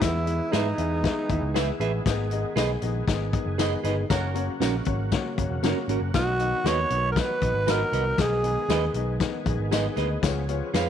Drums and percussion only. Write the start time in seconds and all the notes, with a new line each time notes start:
0.01 kick, snare, closed hi-hat, tambourine
0.27 closed hi-hat
0.53 snare, closed hi-hat, tambourine
0.78 closed hi-hat
1.04 kick, snare, closed hi-hat, tambourine
1.29 kick, closed hi-hat
1.56 snare, closed hi-hat, tambourine
1.81 closed hi-hat
2.06 kick, snare, closed hi-hat, tambourine
2.31 closed hi-hat
2.57 snare, closed hi-hat, tambourine
2.82 closed hi-hat
3.08 kick, snare, closed hi-hat, tambourine
3.33 kick, closed hi-hat
3.59 snare, closed hi-hat, tambourine
3.84 snare, closed hi-hat
4.10 kick, snare, closed hi-hat, tambourine
4.35 closed hi-hat
4.61 snare, closed hi-hat, tambourine
4.85 kick, closed hi-hat
5.12 kick, snare, closed hi-hat, tambourine
5.38 kick, closed hi-hat
5.63 snare, closed hi-hat, tambourine
5.89 closed hi-hat
6.14 kick, snare, closed hi-hat, tambourine
6.40 closed hi-hat
6.66 snare, closed hi-hat, tambourine
6.90 closed hi-hat
7.16 kick, snare, closed hi-hat, tambourine
7.42 kick, closed hi-hat
7.68 snare, closed hi-hat, tambourine
7.93 closed hi-hat
8.18 kick, snare, closed hi-hat, tambourine
8.44 closed hi-hat
8.70 snare, closed hi-hat, tambourine
8.94 closed hi-hat
9.20 kick, snare, closed hi-hat, tambourine
9.46 kick, closed hi-hat
9.72 snare, closed hi-hat, tambourine
9.97 snare, closed hi-hat
10.23 kick, snare, closed hi-hat, tambourine
10.49 closed hi-hat
10.74 snare, closed hi-hat, tambourine